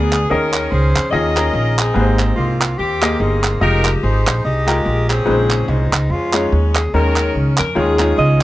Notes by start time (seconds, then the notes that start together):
Already playing: D2 B3 D4 G#4 A#4 D5
0.13 clap
0.30 D#2 D#3 C#4 G#4 A#4 D#5
0.54 clap
0.71 C#2 G#4 C5
0.95 F2, clap
1.11 D#2 D#3 C#4 F4 G#4 A#4 D#5
1.36 C#4 F4 G#4 A#4, clap
1.53 A#1
1.79 C4 D#4 G#4, clap
1.94 G#1 G#2 A#3 G4 G#4 B4
2.00 C5
2.19 clap
2.37 C2 A#3 C4 F4
2.62 clap
2.78 D#2 A#3 C4 G4
3.02 A#3 G4 G#4 D#5, clap
3.20 G1 C4 D#4 G#4
3.44 clap
3.61 F1 G#3 D#4 F4 G4 A#4 D#5
3.85 clap
4.03 G#1 D#4 G#4 C5
4.27 A#1, clap
4.45 C2 G4 G#4 D#5
4.66 G#3 F4 A#4 G5, clap
4.86 A#1
5.10 C4 C#4 G#4, clap
5.25 A#1 A#2 C#3 G#3 D#4 B4
5.31 C5
5.51 clap
5.68 C2 G#3 C4 D#4
5.92 C#2, clap
6.10 F2 G#3 C#4 F4
6.33 G#3 C#4 D#4 C#5, clap
6.52 D#2
6.75 G#4, clap
6.94 D#2 D#3 G#3 C#4 D#4 A#4
7.16 clap
7.35 C#2
7.58 F2 A#4, clap
7.75 D#2 D#3 G#3 C#4 D#4 F4 G#4 C#5
7.99 G#3 D#4 F4 C#5, clap
8.18 C#2 D#5